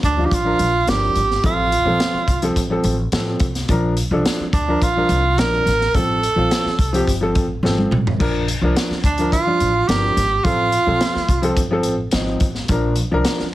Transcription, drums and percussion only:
0.03 kick medium
0.03 closed hi-hat medium
0.31 kick medium
0.31 closed hi-hat medium
0.59 closed hi-hat medium
0.88 snare medium
0.88 closed hi-hat medium
1.16 closed hi-hat medium
1.31 snare soft
1.44 kick medium
1.44 closed hi-hat medium
1.72 closed hi-hat medium
2.00 snare loud
2.00 closed hi-hat medium
2.28 kick medium
2.28 closed hi-hat medium
2.42 closed hi-hat soft
2.56 kick medium
2.56 closed hi-hat medium
2.84 closed hi-hat medium
3.12 snare loud
3.12 closed hi-hat medium
3.40 kick medium
3.40 closed hi-hat medium
3.55 snare soft
3.55 closed hi-hat medium
3.69 kick medium
3.69 closed hi-hat medium
3.97 closed hi-hat medium
4.25 snare loud
4.25 closed hi-hat medium
4.53 kick loud
4.53 closed hi-hat medium
4.82 kick medium
4.82 closed hi-hat medium
5.09 closed hi-hat medium
5.38 snare loud
5.38 closed hi-hat medium
5.67 snare soft
5.67 closed hi-hat medium
5.81 snare soft
5.95 kick medium
5.95 closed hi-hat medium
6.23 closed hi-hat medium
6.51 snare loud
6.51 closed hi-hat medium
6.66 snare soft
6.79 kick medium
6.79 closed hi-hat medium
6.94 closed hi-hat soft
7.07 kick medium
7.07 closed hi-hat medium
7.35 kick medium
7.35 closed hi-hat medium
7.65 snare soft
7.78 high tom medium
7.92 mid tom medium
8.07 floor tom medium
8.20 kick medium
8.20 crash medium
8.48 closed hi-hat medium
8.77 snare loud
8.77 closed hi-hat medium
8.92 snare soft
9.04 kick medium
9.04 closed hi-hat medium
9.18 closed hi-hat soft
9.32 kick medium
9.32 closed hi-hat medium
9.60 closed hi-hat medium
9.89 snare loud
9.89 closed hi-hat medium
10.17 snare soft
10.17 closed hi-hat medium
10.45 kick medium
10.45 closed hi-hat medium
10.72 closed hi-hat medium
11.01 snare medium
11.01 closed hi-hat medium
11.16 snare soft
11.29 kick medium
11.29 closed hi-hat medium
11.43 closed hi-hat soft
11.57 kick medium
11.57 closed hi-hat medium
11.83 closed hi-hat medium
12.11 snare loud
12.11 closed hi-hat medium
12.40 kick medium
12.40 closed hi-hat medium
12.55 snare soft
12.68 kick medium
12.68 closed hi-hat medium
12.96 closed hi-hat medium
13.25 snare medium
13.25 closed hi-hat medium
13.39 snare soft

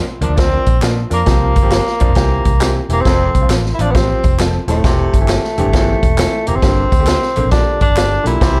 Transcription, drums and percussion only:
0.21 closed hi-hat medium
0.37 kick medium
0.37 snare loud
0.37 closed hi-hat medium
0.37 tambourine soft
0.66 kick medium
0.66 closed hi-hat medium
0.66 tambourine medium
0.82 snare loud
0.82 clap loud
0.82 closed hi-hat medium
0.82 tambourine loud
1.11 closed hi-hat medium
1.11 tambourine medium
1.26 kick medium
1.26 snare medium
1.26 closed hi-hat medium
1.26 tambourine medium
1.56 kick medium
1.56 closed hi-hat medium
1.56 tambourine medium
1.71 snare loud
1.71 clap medium
1.71 closed hi-hat medium
1.71 tambourine medium
1.87 snare soft
2.00 kick medium
2.00 closed hi-hat medium
2.00 tambourine soft
2.15 kick medium
2.15 snare loud
2.15 closed hi-hat medium
2.45 kick medium
2.45 closed hi-hat medium
2.45 tambourine medium
2.61 snare loud
2.61 clap loud
2.61 closed hi-hat medium
2.61 tambourine loud
2.89 closed hi-hat medium
2.89 tambourine medium
3.05 kick medium
3.05 snare medium
3.05 closed hi-hat medium
3.05 tambourine medium
3.35 kick medium
3.35 closed hi-hat medium
3.35 tambourine medium
3.50 snare medium
3.50 clap medium
3.50 closed hi-hat medium
3.50 tambourine medium
3.66 snare soft
3.79 closed hi-hat medium
3.79 tambourine soft
3.95 kick loud
3.95 snare loud
3.95 closed hi-hat medium
3.95 tambourine soft
4.24 kick medium
4.24 closed hi-hat medium
4.24 tambourine medium
4.39 snare loud
4.39 clap loud
4.39 closed hi-hat medium
4.39 tambourine loud
4.68 closed hi-hat medium
4.68 tambourine medium
4.84 kick loud
4.84 snare medium
4.84 closed hi-hat medium
4.84 tambourine medium
5.14 kick medium
5.14 closed hi-hat medium
5.14 tambourine medium
5.28 snare loud
5.28 clap medium
5.28 closed hi-hat medium
5.28 tambourine medium
5.44 snare soft
5.58 closed hi-hat medium
5.73 kick medium
5.73 snare loud
5.73 closed hi-hat loud
6.03 kick medium
6.03 closed hi-hat medium
6.03 tambourine medium
6.18 snare loud
6.18 clap loud
6.18 closed hi-hat medium
6.18 tambourine loud
6.47 closed hi-hat medium
6.47 tambourine medium
6.62 kick loud
6.62 snare medium
6.62 closed hi-hat medium
6.62 tambourine medium
6.92 kick medium
6.92 closed hi-hat medium
6.92 tambourine medium
7.07 snare loud
7.07 clap medium
7.07 closed hi-hat medium
7.07 tambourine medium
7.22 snare soft
7.36 closed hi-hat medium
7.36 tambourine soft
7.51 kick medium
7.51 snare loud
7.51 closed hi-hat loud
7.51 tambourine soft
7.81 kick medium
7.81 closed hi-hat medium
7.81 tambourine medium
7.96 snare loud
7.96 clap loud
7.96 closed hi-hat medium
7.96 tambourine loud
8.26 closed hi-hat medium
8.26 tambourine medium
8.41 kick medium
8.41 snare loud
8.41 closed hi-hat medium
8.41 tambourine medium

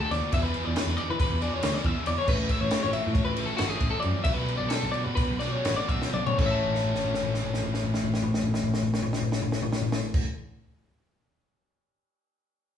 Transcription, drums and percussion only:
0.11 snare soft
0.11 ride medium
0.32 kick loud
0.32 ride loud
0.54 ride medium
0.76 snare loud
0.76 ride loud
0.98 ride medium
1.20 kick loud
1.20 ride loud
1.42 ride medium
1.63 snare loud
1.63 ride loud
1.84 kick medium
1.84 ride medium
2.06 ride medium
2.28 kick loud
2.28 crash loud
2.49 kick medium
2.49 ride medium
2.71 snare loud
2.71 ride loud
2.93 ride medium
3.15 kick loud
3.15 ride loud
3.37 ride medium
3.58 snare loud
3.58 ride loud
3.81 kick medium
3.81 ride medium
4.02 ride medium
4.24 kick loud
4.24 ride medium
4.48 ride medium
4.70 snare loud
4.70 ride medium
4.94 ride medium
5.17 kick loud
5.17 snare soft
5.17 ride loud
5.40 snare soft
5.40 ride medium
5.65 snare loud
5.65 ride loud
5.89 kick medium
5.89 ride medium
6.02 snare medium
6.13 mid tom medium
6.27 floor tom loud
6.39 kick loud
6.39 crash medium
6.65 floor tom soft
6.75 snare medium
6.84 floor tom medium
6.95 snare medium
7.04 floor tom medium
7.14 snare medium
7.23 floor tom medium
7.34 snare medium
7.44 floor tom medium
7.54 snare medium
7.63 floor tom medium
7.74 snare medium
7.83 floor tom medium
7.94 snare medium
8.04 floor tom medium
8.14 snare medium
8.22 floor tom medium
8.34 snare medium
8.43 floor tom medium
8.54 snare medium
8.63 floor tom medium
8.74 snare medium
8.83 floor tom medium
8.94 snare medium
9.02 floor tom medium
9.13 snare medium
9.22 floor tom medium
9.32 snare medium
9.42 floor tom medium
9.52 snare medium
9.62 floor tom medium
9.73 snare medium
9.81 floor tom medium
9.92 snare loud
10.14 kick loud
10.14 crash loud

